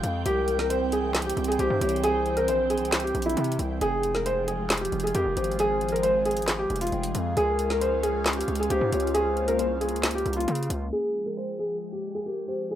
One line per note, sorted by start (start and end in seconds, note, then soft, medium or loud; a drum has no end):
0.00 0.25 F2 loud
0.00 0.22 F3 medium
0.00 0.22 G#3 medium
0.00 0.22 F4 medium
0.00 0.25 F5 medium
0.00 7.33 G5 loud
0.00 closed hi-hat medium
0.26 1.33 C2 loud
0.26 3.78 E3 medium
0.26 3.78 C4 medium
0.26 0.57 G4 loud
0.26 1.11 A#4 loud
0.26 closed hi-hat medium
0.48 closed hi-hat medium
0.59 0.68 A#4 medium
0.59 snare medium
0.70 0.88 C5 medium
0.70 closed hi-hat medium
0.92 1.24 G#4 medium
0.92 closed hi-hat medium
1.15 snare loud
1.15 clap medium
1.15 closed hi-hat soft
1.22 1.43 G4 medium
1.22 closed hi-hat medium
1.29 closed hi-hat medium
1.37 1.58 C2 loud
1.37 closed hi-hat medium
1.44 1.57 G#4 medium
1.44 closed hi-hat medium
1.52 closed hi-hat medium
1.59 1.70 C2 loud
1.59 1.77 G4 loud
1.59 1.80 C5 medium
1.59 closed hi-hat medium
1.70 1.81 G2 loud
1.81 2.49 C2 loud
1.81 1.99 G4 medium
1.81 2.02 C#5 medium
1.81 closed hi-hat medium
1.89 closed hi-hat medium
1.96 closed hi-hat soft
2.04 2.35 G#4 loud
2.04 2.88 C5 loud
2.04 closed hi-hat medium
2.26 closed hi-hat soft
2.37 2.46 A#4 medium
2.37 closed hi-hat medium
2.48 2.83 A#1 loud
2.48 2.66 C5 medium
2.48 closed hi-hat medium
2.70 3.01 G#4 medium
2.70 closed hi-hat medium
2.78 3.13 C2 loud
2.78 closed hi-hat medium
2.85 closed hi-hat medium
2.92 snare loud
2.92 clap medium
2.92 closed hi-hat medium
3.00 3.21 G4 medium
3.00 closed hi-hat medium
3.07 closed hi-hat soft
3.15 3.36 A#1 loud
3.15 closed hi-hat medium
3.22 3.78 E4 medium
3.22 closed hi-hat medium
3.29 closed hi-hat medium
3.37 3.58 C3 loud
3.37 closed hi-hat medium
3.44 closed hi-hat medium
3.52 closed hi-hat medium
3.59 3.80 C2 loud
3.59 closed hi-hat medium
3.81 4.88 F1 loud
3.81 7.33 F3 medium
3.81 9.11 G#3 medium
3.81 4.66 G#4 loud
3.81 4.13 G#4 loud
3.81 closed hi-hat medium
4.03 closed hi-hat medium
4.15 4.24 A#4 medium
4.15 snare medium
4.26 4.43 C5 medium
4.26 closed hi-hat medium
4.48 4.79 G#4 medium
4.48 closed hi-hat medium
4.70 snare loud
4.70 clap medium
4.70 closed hi-hat soft
4.78 4.99 G4 medium
4.78 closed hi-hat medium
4.85 closed hi-hat medium
4.92 5.14 F1 loud
4.92 closed hi-hat soft
5.00 5.12 G#4 medium
5.00 closed hi-hat medium
5.07 closed hi-hat medium
5.14 5.25 F2 loud
5.14 5.32 G4 medium
5.14 5.36 A#4 medium
5.14 closed hi-hat medium
5.26 5.36 F1 loud
5.37 6.66 G#1 loud
5.37 5.54 G4 medium
5.37 5.58 C5 medium
5.37 closed hi-hat medium
5.44 closed hi-hat medium
5.52 closed hi-hat soft
5.59 5.91 G#4 loud
5.59 6.44 C5 loud
5.59 closed hi-hat medium
5.81 closed hi-hat soft
5.89 6.01 A#4 medium
5.89 closed hi-hat medium
5.96 closed hi-hat medium
6.03 6.21 C5 medium
6.03 closed hi-hat medium
6.25 6.57 G#4 medium
6.25 closed hi-hat soft
6.25 open hi-hat medium
6.31 closed hi-hat medium
6.37 closed hi-hat medium
6.42 closed hi-hat medium
6.48 snare loud
6.48 clap medium
6.48 closed hi-hat medium
6.59 6.76 G4 medium
6.70 6.91 F1 loud
6.70 closed hi-hat medium
6.76 closed hi-hat medium
6.81 7.33 F4 medium
6.81 closed hi-hat medium
6.87 closed hi-hat medium
6.92 7.14 F1 loud
6.92 7.14 G5 medium
6.92 closed hi-hat soft
7.03 closed hi-hat medium
7.15 7.36 F2 loud
7.15 7.36 F5 medium
7.15 closed hi-hat medium
7.37 8.44 C#2 loud
7.37 10.89 C#4 medium
7.37 10.89 F4 loud
7.37 7.68 G#4 loud
7.37 8.22 A#4 loud
7.37 closed hi-hat medium
7.59 closed hi-hat medium
7.70 7.79 A#4 medium
7.70 snare medium
7.81 7.99 C5 medium
7.81 closed hi-hat medium
8.03 8.35 G#4 medium
8.03 closed hi-hat medium
8.26 snare loud
8.26 clap medium
8.26 closed hi-hat soft
8.33 8.54 G4 medium
8.33 closed hi-hat medium
8.41 closed hi-hat medium
8.48 8.69 C#2 loud
8.48 closed hi-hat medium
8.55 closed hi-hat medium
8.60 8.68 G#4 medium
8.60 closed hi-hat medium
8.70 8.81 C#2 loud
8.70 8.88 G4 medium
8.70 8.91 C5 medium
8.70 closed hi-hat medium
8.81 8.92 G#2 loud
8.92 9.61 C#2 loud
8.92 9.10 G4 medium
8.92 9.13 C#5 medium
8.92 closed hi-hat medium
9.00 closed hi-hat medium
9.07 closed hi-hat soft
9.14 10.91 A#3 medium
9.14 9.46 G#4 loud
9.14 10.00 C5 loud
9.14 closed hi-hat medium
9.37 closed hi-hat soft
9.48 9.57 A#4 medium
9.48 closed hi-hat medium
9.59 9.94 C2 loud
9.59 9.76 C5 medium
9.59 closed hi-hat medium
9.81 10.12 G#4 medium
9.81 closed hi-hat medium
9.89 10.24 C#2 loud
9.89 closed hi-hat medium
9.96 closed hi-hat medium
10.03 snare loud
10.03 clap medium
10.03 closed hi-hat medium
10.11 closed hi-hat medium
10.15 10.32 G4 medium
10.15 closed hi-hat soft
10.26 10.47 C2 loud
10.26 closed hi-hat soft
10.33 10.89 F4 medium
10.33 closed hi-hat medium
10.40 closed hi-hat medium
10.48 10.69 C#3 loud
10.48 closed hi-hat medium
10.55 closed hi-hat medium
10.63 closed hi-hat medium
10.70 10.91 C#2 loud
10.70 closed hi-hat medium
10.92 12.75 F3 medium
10.92 12.75 G#3 medium
10.92 11.77 G#4 loud
10.92 11.24 G#4 loud
10.92 12.75 G5 medium
11.26 11.35 A#4 medium
11.37 11.55 C5 medium
11.59 11.90 G#4 medium
11.92 12.10 G4 medium
12.15 12.23 G#4 medium
12.26 12.43 G4 medium
12.26 12.47 A#4 medium
12.48 12.65 G4 medium
12.48 12.69 C5 medium
12.70 12.75 G#4 loud
12.70 12.75 C5 loud